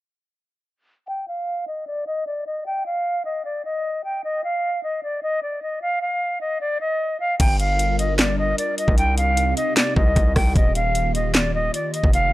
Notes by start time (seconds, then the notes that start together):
1.08 G5
1.28 F5
1.67 D#5
1.87 D5
2.07 D#5
2.27 D5
2.47 D#5
2.66 G5
2.86 F5
3.25 D#5
3.45 D5
3.65 D#5
4.04 G5
4.24 D#5
4.44 F5
4.83 D#5
5.03 D5
5.23 D#5
5.43 D5
5.62 D#5
5.82 F5
6.02 F5
6.41 D#5
6.61 D5
6.81 D#5
7.20 F5
7.39 G1 G3 D4 F4 A#4 G5, kick, closed hi-hat, crash
7.59 F5, closed hi-hat
7.79 closed hi-hat
7.99 D#5, closed hi-hat
8.18 D5, snare, clap, closed hi-hat
8.38 D#5
8.58 D5, closed hi-hat
8.78 D#5, closed hi-hat
8.88 C2, kick
8.98 C3 C4 D#4 G4 G5, closed hi-hat
9.18 F5, closed hi-hat
9.37 closed hi-hat
9.57 D#5, closed hi-hat
9.76 D5, snare, clap, closed hi-hat
9.96 C2 D#5, kick
10.16 C2, kick, closed hi-hat
10.36 C2 G5, kick, cross-stick, open hi-hat
10.56 D#1 D#3 A#3 F4 D#5, kick, closed hi-hat
10.75 F5, closed hi-hat
10.95 closed hi-hat
11.15 D#5, closed hi-hat
11.35 D5, snare, clap, closed hi-hat
11.54 D#5
11.74 D5, closed hi-hat
11.94 D#5, closed hi-hat
12.04 F1, kick
12.13 A3 C4 F5, closed hi-hat